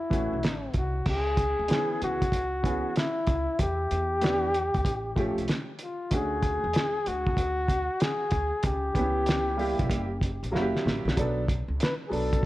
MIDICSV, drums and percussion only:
0, 0, Header, 1, 2, 480
1, 0, Start_track
1, 0, Tempo, 631579
1, 810, Time_signature, 4, 2, 24, 8
1, 9465, End_track
2, 0, Start_track
2, 0, Title_t, "Drums"
2, 84, Note_on_c, 9, 36, 91
2, 97, Note_on_c, 9, 42, 63
2, 160, Note_off_c, 9, 36, 0
2, 173, Note_off_c, 9, 42, 0
2, 327, Note_on_c, 9, 42, 67
2, 339, Note_on_c, 9, 38, 97
2, 403, Note_off_c, 9, 42, 0
2, 415, Note_off_c, 9, 38, 0
2, 559, Note_on_c, 9, 42, 69
2, 565, Note_on_c, 9, 36, 85
2, 635, Note_off_c, 9, 42, 0
2, 641, Note_off_c, 9, 36, 0
2, 803, Note_on_c, 9, 49, 90
2, 807, Note_on_c, 9, 36, 100
2, 879, Note_off_c, 9, 49, 0
2, 883, Note_off_c, 9, 36, 0
2, 1044, Note_on_c, 9, 36, 92
2, 1044, Note_on_c, 9, 42, 78
2, 1120, Note_off_c, 9, 36, 0
2, 1120, Note_off_c, 9, 42, 0
2, 1281, Note_on_c, 9, 42, 90
2, 1302, Note_on_c, 9, 38, 102
2, 1357, Note_off_c, 9, 42, 0
2, 1378, Note_off_c, 9, 38, 0
2, 1534, Note_on_c, 9, 42, 76
2, 1610, Note_off_c, 9, 42, 0
2, 1687, Note_on_c, 9, 36, 88
2, 1688, Note_on_c, 9, 42, 64
2, 1763, Note_off_c, 9, 36, 0
2, 1764, Note_off_c, 9, 42, 0
2, 1765, Note_on_c, 9, 36, 83
2, 1774, Note_on_c, 9, 42, 85
2, 1841, Note_off_c, 9, 36, 0
2, 1850, Note_off_c, 9, 42, 0
2, 2006, Note_on_c, 9, 36, 93
2, 2018, Note_on_c, 9, 42, 67
2, 2082, Note_off_c, 9, 36, 0
2, 2094, Note_off_c, 9, 42, 0
2, 2249, Note_on_c, 9, 42, 74
2, 2260, Note_on_c, 9, 38, 90
2, 2325, Note_off_c, 9, 42, 0
2, 2336, Note_off_c, 9, 38, 0
2, 2483, Note_on_c, 9, 42, 72
2, 2489, Note_on_c, 9, 36, 96
2, 2559, Note_off_c, 9, 42, 0
2, 2565, Note_off_c, 9, 36, 0
2, 2729, Note_on_c, 9, 42, 99
2, 2731, Note_on_c, 9, 36, 102
2, 2805, Note_off_c, 9, 42, 0
2, 2807, Note_off_c, 9, 36, 0
2, 2972, Note_on_c, 9, 42, 76
2, 3048, Note_off_c, 9, 42, 0
2, 3204, Note_on_c, 9, 42, 85
2, 3225, Note_on_c, 9, 38, 115
2, 3280, Note_off_c, 9, 42, 0
2, 3301, Note_off_c, 9, 38, 0
2, 3453, Note_on_c, 9, 42, 74
2, 3529, Note_off_c, 9, 42, 0
2, 3603, Note_on_c, 9, 42, 66
2, 3606, Note_on_c, 9, 36, 94
2, 3679, Note_off_c, 9, 42, 0
2, 3682, Note_off_c, 9, 36, 0
2, 3684, Note_on_c, 9, 36, 85
2, 3690, Note_on_c, 9, 42, 83
2, 3760, Note_off_c, 9, 36, 0
2, 3766, Note_off_c, 9, 42, 0
2, 3925, Note_on_c, 9, 36, 92
2, 3933, Note_on_c, 9, 42, 74
2, 4001, Note_off_c, 9, 36, 0
2, 4009, Note_off_c, 9, 42, 0
2, 4089, Note_on_c, 9, 42, 57
2, 4163, Note_off_c, 9, 42, 0
2, 4163, Note_on_c, 9, 42, 75
2, 4174, Note_on_c, 9, 38, 93
2, 4239, Note_off_c, 9, 42, 0
2, 4250, Note_off_c, 9, 38, 0
2, 4397, Note_on_c, 9, 42, 70
2, 4473, Note_off_c, 9, 42, 0
2, 4643, Note_on_c, 9, 42, 103
2, 4646, Note_on_c, 9, 36, 97
2, 4719, Note_off_c, 9, 42, 0
2, 4722, Note_off_c, 9, 36, 0
2, 4884, Note_on_c, 9, 36, 87
2, 4884, Note_on_c, 9, 42, 75
2, 4960, Note_off_c, 9, 36, 0
2, 4960, Note_off_c, 9, 42, 0
2, 5120, Note_on_c, 9, 42, 87
2, 5140, Note_on_c, 9, 38, 109
2, 5196, Note_off_c, 9, 42, 0
2, 5216, Note_off_c, 9, 38, 0
2, 5368, Note_on_c, 9, 42, 79
2, 5444, Note_off_c, 9, 42, 0
2, 5523, Note_on_c, 9, 36, 92
2, 5599, Note_off_c, 9, 36, 0
2, 5600, Note_on_c, 9, 36, 82
2, 5607, Note_on_c, 9, 42, 82
2, 5676, Note_off_c, 9, 36, 0
2, 5683, Note_off_c, 9, 42, 0
2, 5840, Note_on_c, 9, 36, 92
2, 5847, Note_on_c, 9, 42, 68
2, 5916, Note_off_c, 9, 36, 0
2, 5923, Note_off_c, 9, 42, 0
2, 6082, Note_on_c, 9, 42, 74
2, 6093, Note_on_c, 9, 38, 109
2, 6158, Note_off_c, 9, 42, 0
2, 6169, Note_off_c, 9, 38, 0
2, 6312, Note_on_c, 9, 42, 75
2, 6321, Note_on_c, 9, 36, 95
2, 6388, Note_off_c, 9, 42, 0
2, 6397, Note_off_c, 9, 36, 0
2, 6556, Note_on_c, 9, 42, 95
2, 6563, Note_on_c, 9, 36, 106
2, 6632, Note_off_c, 9, 42, 0
2, 6639, Note_off_c, 9, 36, 0
2, 6802, Note_on_c, 9, 36, 95
2, 6804, Note_on_c, 9, 42, 73
2, 6878, Note_off_c, 9, 36, 0
2, 6880, Note_off_c, 9, 42, 0
2, 7039, Note_on_c, 9, 42, 87
2, 7059, Note_on_c, 9, 38, 114
2, 7115, Note_off_c, 9, 42, 0
2, 7135, Note_off_c, 9, 38, 0
2, 7290, Note_on_c, 9, 46, 53
2, 7366, Note_off_c, 9, 46, 0
2, 7442, Note_on_c, 9, 42, 66
2, 7443, Note_on_c, 9, 36, 98
2, 7518, Note_off_c, 9, 42, 0
2, 7519, Note_off_c, 9, 36, 0
2, 7521, Note_on_c, 9, 36, 79
2, 7530, Note_on_c, 9, 42, 88
2, 7597, Note_off_c, 9, 36, 0
2, 7606, Note_off_c, 9, 42, 0
2, 7763, Note_on_c, 9, 36, 87
2, 7773, Note_on_c, 9, 42, 72
2, 7839, Note_off_c, 9, 36, 0
2, 7849, Note_off_c, 9, 42, 0
2, 7931, Note_on_c, 9, 42, 56
2, 8007, Note_off_c, 9, 42, 0
2, 8016, Note_on_c, 9, 38, 53
2, 8092, Note_off_c, 9, 38, 0
2, 8175, Note_on_c, 9, 38, 52
2, 8251, Note_off_c, 9, 38, 0
2, 8262, Note_on_c, 9, 38, 86
2, 8338, Note_off_c, 9, 38, 0
2, 8419, Note_on_c, 9, 38, 87
2, 8490, Note_on_c, 9, 36, 106
2, 8490, Note_on_c, 9, 42, 103
2, 8495, Note_off_c, 9, 38, 0
2, 8566, Note_off_c, 9, 36, 0
2, 8566, Note_off_c, 9, 42, 0
2, 8728, Note_on_c, 9, 36, 90
2, 8733, Note_on_c, 9, 42, 78
2, 8804, Note_off_c, 9, 36, 0
2, 8809, Note_off_c, 9, 42, 0
2, 8969, Note_on_c, 9, 42, 95
2, 8990, Note_on_c, 9, 38, 119
2, 9045, Note_off_c, 9, 42, 0
2, 9066, Note_off_c, 9, 38, 0
2, 9217, Note_on_c, 9, 46, 53
2, 9293, Note_off_c, 9, 46, 0
2, 9369, Note_on_c, 9, 36, 93
2, 9371, Note_on_c, 9, 42, 65
2, 9445, Note_off_c, 9, 36, 0
2, 9447, Note_off_c, 9, 42, 0
2, 9465, End_track
0, 0, End_of_file